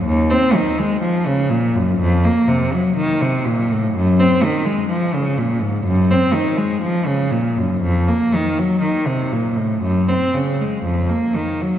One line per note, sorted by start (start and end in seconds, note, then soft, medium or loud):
0.04 0.29 D#2 medium
0.30 0.54 C4 medium
0.55 0.78 D#3 medium
0.79 1.03 G#3 medium
1.02 1.26 F3 medium
1.27 1.51 C#3 medium
1.50 1.74 A#2 medium
1.75 1.99 F#2 medium
2.00 2.23 F2 medium
2.25 2.48 A#3 medium
2.48 2.72 C3 medium
2.74 2.97 F#3 medium
2.97 3.20 D#3 medium
3.21 3.45 C3 medium
3.46 3.69 A#2 medium
3.71 3.94 A2 medium
3.96 4.18 F#2 medium
4.20 4.42 C4 medium
4.44 4.66 D#3 medium
4.66 4.89 G#3 medium
4.90 5.13 F3 medium
5.14 5.37 C#3 medium
5.38 5.61 A#2 medium
5.61 5.85 G#2 medium
5.85 6.09 F#2 medium
6.11 6.34 C4 medium
6.34 6.58 D#3 medium
6.58 6.82 G#3 medium
6.82 7.06 F3 medium
7.06 7.32 C#3 medium
7.31 7.57 A#2 medium
7.57 7.83 F#2 soft
7.82 8.08 F2 medium
8.08 8.34 A#3 medium
8.35 8.59 D#3 medium
8.59 8.84 F#3 medium
8.82 9.07 D#3 medium
9.07 9.32 C3 medium
9.32 9.57 A#2 soft
9.57 9.82 A2 soft
9.82 10.07 F#2 medium
10.09 10.33 C4 soft
10.34 10.58 C#3 soft
10.60 10.84 G#3 soft
10.84 11.08 F2 medium
11.09 11.34 A#3 soft
11.36 11.60 D#3 soft
11.62 11.79 F#3 soft